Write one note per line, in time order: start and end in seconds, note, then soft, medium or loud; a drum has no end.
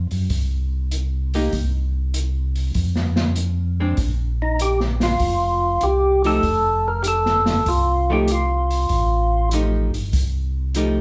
0.11 0.29 F#2 medium
0.11 open hi-hat soft
0.30 1.49 C2 medium
0.30 kick soft
0.30 open hi-hat soft
0.91 closed hi-hat soft
1.34 1.51 A#3 medium
1.34 1.52 D#4 medium
1.34 1.52 G4 medium
1.34 open hi-hat soft
1.52 2.71 C2 medium
1.52 kick soft
1.52 open hi-hat soft
2.14 closed hi-hat medium
2.56 open hi-hat soft
2.74 3.94 F2 medium
2.74 kick soft
2.74 open hi-hat soft
2.96 snare soft
3.16 snare soft
3.36 closed hi-hat soft
3.80 3.97 G#3 medium
3.80 3.97 C4 medium
3.80 3.97 D4 medium
3.97 5.17 A#1 medium
3.97 kick soft
3.97 open hi-hat soft
4.42 4.61 D#4 medium
4.59 4.80 G4 medium
4.59 closed hi-hat medium
4.80 snare soft
5.00 5.86 F4 medium
5.00 snare soft
5.00 open hi-hat soft
5.19 5.78 F1 medium
5.19 kick soft
5.19 open hi-hat soft
5.81 6.40 C2 medium
5.81 6.23 G4 medium
5.81 closed hi-hat soft
6.24 6.42 F3 medium
6.24 6.42 A3 medium
6.24 6.42 D#4 medium
6.24 6.43 G4 medium
6.24 6.89 A4 loud
6.24 open hi-hat soft
6.43 7.63 F1 medium
6.43 kick soft
6.43 open hi-hat soft
6.88 7.02 A#4 medium
7.03 7.06 G4 medium
7.03 closed hi-hat medium
7.08 7.70 A4 medium
7.26 snare soft
7.46 snare soft
7.46 open hi-hat soft
7.66 8.86 C2 medium
7.66 8.12 F4 loud
7.66 kick soft
7.66 open hi-hat soft
8.10 8.27 F3 medium
8.10 8.27 A3 medium
8.10 8.27 D#4 medium
8.10 8.28 G4 medium
8.10 8.31 G4 medium
8.28 closed hi-hat soft
8.32 9.49 F4 medium
8.71 open hi-hat soft
8.89 9.90 A1 medium
8.89 kick soft
8.89 open hi-hat soft
9.51 9.90 F3 soft
9.51 9.91 A3 soft
9.51 9.91 D#4 medium
9.51 9.91 G4 medium
9.51 closed hi-hat soft
9.94 10.12 G1 medium
9.94 open hi-hat soft
10.13 11.01 C2 medium
10.13 kick soft
10.13 open hi-hat soft
10.75 11.01 F3 medium
10.75 11.01 A3 medium
10.75 11.01 D#4 medium
10.75 11.01 G4 medium
10.75 closed hi-hat medium